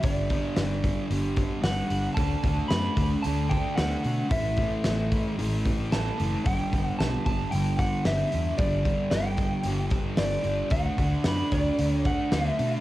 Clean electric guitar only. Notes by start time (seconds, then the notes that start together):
0.04 D5
1.63 F#5
2.14 A5
2.68 B5
3.22 A5
3.49 G5
3.76 F#5
4.31 E5
5.92 A5
6.46 G5
6.86 F#5
6.99 A5
7.26 A5
7.51 G5
7.79 F#5
8.06 E5
8.58 D5
9.11 G5
10.18 D5
10.72 F#5
11.28 B5
11.52 D5
11.92 C#5
12.06 F#5
12.34 E5